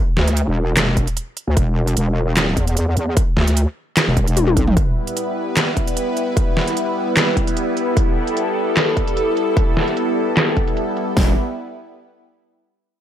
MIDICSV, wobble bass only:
0, 0, Header, 1, 2, 480
1, 0, Start_track
1, 0, Key_signature, 1, "minor"
1, 0, Tempo, 400000
1, 1880, Time_signature, 4, 2, 24, 8
1, 15606, End_track
2, 0, Start_track
2, 0, Title_t, "Wobble bass"
2, 0, Program_c, 0, 39
2, 201, Note_on_c, 0, 38, 95
2, 549, Note_off_c, 0, 38, 0
2, 570, Note_on_c, 0, 28, 96
2, 1269, Note_off_c, 0, 28, 0
2, 1769, Note_on_c, 0, 38, 100
2, 1863, Note_off_c, 0, 38, 0
2, 1881, Note_on_c, 0, 28, 101
2, 2343, Note_off_c, 0, 28, 0
2, 2361, Note_on_c, 0, 28, 98
2, 2853, Note_off_c, 0, 28, 0
2, 2853, Note_on_c, 0, 27, 98
2, 3063, Note_off_c, 0, 27, 0
2, 3081, Note_on_c, 0, 40, 99
2, 3543, Note_off_c, 0, 40, 0
2, 3561, Note_on_c, 0, 40, 100
2, 3783, Note_off_c, 0, 40, 0
2, 4041, Note_on_c, 0, 38, 100
2, 4389, Note_off_c, 0, 38, 0
2, 4890, Note_on_c, 0, 28, 99
2, 5109, Note_off_c, 0, 28, 0
2, 5129, Note_on_c, 0, 28, 96
2, 5463, Note_off_c, 0, 28, 0
2, 5481, Note_on_c, 0, 35, 99
2, 5703, Note_off_c, 0, 35, 0
2, 13400, Note_on_c, 0, 28, 92
2, 13623, Note_off_c, 0, 28, 0
2, 15606, End_track
0, 0, End_of_file